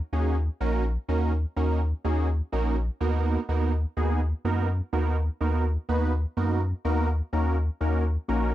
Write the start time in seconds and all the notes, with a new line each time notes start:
0.13 D#2 A#3 C#4 D#4 F#4 G#4
0.60 A#1 A#3 C#4 D#4 F#4 A#4
1.08 D#2 A#3 C#4 D#4 F#4 A#4
1.56 D#2 A#3 C#4 D#4 F#4 A#4
2.04 D#2 A#3 C#4 D#4 F#4 G#4
2.52 A#1 A#3 C#4 D#4 F#4 A#4
3.00 D#2 A#3 B3 D#4 F#4 A#4
3.49 D#2 A#3 B3 D#4 F#4 A#4
3.97 D#2 A#3 B3 D#4 F#4 G#4
4.45 F#2 A#3 B3 D#4 F#4 A#4
4.93 D#2 A#3 B3 D#4 F#4 A#4
5.41 D#2 A#3 B3 D#4 F#4 A#4
5.89 D#2 A#3 B3 D#4 F#4 B4
6.37 F#2 A#3 B3 D#4 F#4 A#4
6.85 D#2 A#3 B3 D#4 F#4 A#4
7.33 D#2 A#3 C#4 D#4 F#4 A#4
7.81 D#2 A#3 C#4 D#4 F#4 A#4
8.28 A#1 A#3 C#4 D#4 F#4 A#4